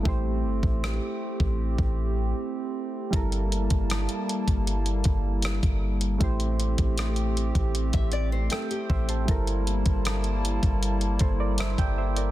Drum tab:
HH |----------------|xxxxxxxxxxx-xx-x|xxxxxxxxxxx-xx-x|xxxxxxxxxxx-xx-x|
SD |----r-----------|----r-------r---|----r-------r---|----r-------r---|
BD |o--o---o-o------|o--o---o--o--o--|o--o---o-o----o-|o--o---o--o--o--|